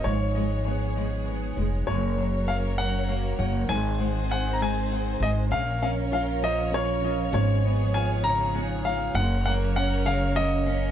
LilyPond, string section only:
\new Staff \with { instrumentName = "String section" } { \time 6/8 \key des \major \tempo 4. = 66 << { <f des''>2. | <ges des''>2. | <ees c''>2. | <f des''>2.~ |
<f des''>2. | <ges des''>2. | } \\ { <ces' aes'>2. | <des' bes'>2. | <c' aes'>2. | <des' bes'>2. |
<ces' aes'>2. | <des' bes'>2. | } >> }